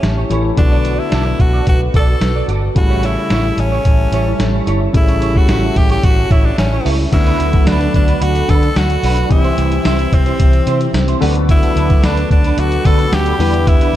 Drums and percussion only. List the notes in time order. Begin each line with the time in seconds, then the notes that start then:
0.03 snare, closed hi-hat
0.31 closed hi-hat
0.57 kick, closed hi-hat
0.85 closed hi-hat
1.12 snare, closed hi-hat
1.40 kick, closed hi-hat
1.67 kick, closed hi-hat
1.94 kick, closed hi-hat
2.21 snare, closed hi-hat
2.49 closed hi-hat
2.76 kick, closed hi-hat
3.03 closed hi-hat
3.30 snare, closed hi-hat
3.58 closed hi-hat
3.85 kick, closed hi-hat
4.12 closed hi-hat
4.40 snare, closed hi-hat
4.67 closed hi-hat
4.94 kick, closed hi-hat
5.08 closed hi-hat
5.22 closed hi-hat
5.36 kick
5.49 snare, closed hi-hat
5.76 kick, closed hi-hat
5.90 closed hi-hat
6.03 kick, closed hi-hat
6.31 kick, closed hi-hat
6.58 snare, closed hi-hat
6.86 open hi-hat
7.13 kick, closed hi-hat, crash
7.27 closed hi-hat
7.40 closed hi-hat
7.53 kick, closed hi-hat
7.67 snare, closed hi-hat, tambourine
7.81 closed hi-hat
7.94 kick, closed hi-hat
8.08 closed hi-hat
8.22 closed hi-hat
8.35 closed hi-hat
8.49 kick, closed hi-hat
8.63 closed hi-hat
8.76 snare, closed hi-hat, tambourine
8.90 closed hi-hat
9.04 open hi-hat
9.17 closed hi-hat
9.31 kick, closed hi-hat
9.44 closed hi-hat
9.58 closed hi-hat
9.72 closed hi-hat
9.85 snare, closed hi-hat, tambourine
9.99 closed hi-hat
10.12 kick, closed hi-hat
10.26 closed hi-hat
10.40 kick, closed hi-hat
10.53 closed hi-hat
10.67 closed hi-hat
10.81 closed hi-hat
10.94 snare, closed hi-hat, tambourine
11.08 closed hi-hat
11.22 open hi-hat
11.35 closed hi-hat
11.49 kick, closed hi-hat
11.63 closed hi-hat
11.77 closed hi-hat
11.90 kick, closed hi-hat
12.03 snare, closed hi-hat, tambourine
12.17 closed hi-hat
12.31 kick, closed hi-hat
12.44 closed hi-hat
12.58 closed hi-hat
12.72 closed hi-hat
12.85 kick, closed hi-hat
12.99 closed hi-hat
13.13 snare, closed hi-hat, tambourine
13.26 closed hi-hat
13.40 open hi-hat
13.54 closed hi-hat
13.67 kick, closed hi-hat
13.81 closed hi-hat